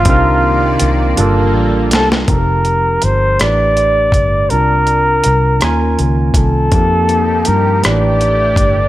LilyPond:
<<
  \new Staff \with { instrumentName = "Flugelhorn" } { \time 6/8 \key f \mixolydian \tempo 4. = 54 f'2~ f'8 a'8 | bes'4 c''8 d''4. | bes'2 r8 a'8~ | a'4 bes'8 d''4. | }
  \new Staff \with { instrumentName = "Tine electric piano" } { \time 6/8 \key f \mixolydian <c c' d' ees' bes'>4. <g bes d' f' a'>4. | <f c' ees' g' a' bes'>4. <a, a d' g' b'>4. | <c c' d' f' bes'>4. <ees bes des' f' aes''>4. | <f bes c' ees' g'>4. <a, a d' g' b'>4. | }
  \new Staff \with { instrumentName = "Analog synth pad" } { \time 6/8 \key f \mixolydian <c ees bes d''>4. <g bes f' a'>4. | r2. | r2. | <f bes ees' g'>4. <a d' g'>4. | }
  \new Staff \with { instrumentName = "Fingered electric bass" } { \clef bass \time 6/8 \key f \mixolydian c,4 c,8 g,,8 a,,8 c,8 | f,,4 g,,8 a,,4 g,,8 | c,4 c,8 ees,8 des,8 c,8 | f,4 g,8 a,,4 g,,8 | }
  \new DrumStaff \with { instrumentName = "Drums" } \drummode { \time 6/8 <hh bd>4 hh8 hh4 <hh sn>16 sn16 | <hh bd>8 hh8 hh8 <hh ss>8 hh8 <hh bd>8 | hh8 hh8 hh8 <hh ss>8 hh8 <hh bd>8 | <hh bd>8 hh8 hh8 <hh ss>8 hh8 <hh bd>8 | }
>>